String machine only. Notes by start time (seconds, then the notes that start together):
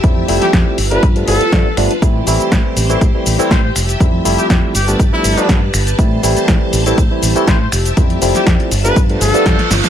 Already playing: G4 E5 A5
0.78 F4 B4
2.02 G4 C5
3.76 E5
4.75 G4 B4 A5
5.99 G4 C5
7.72 G4 E5 A5
8.72 F4 B4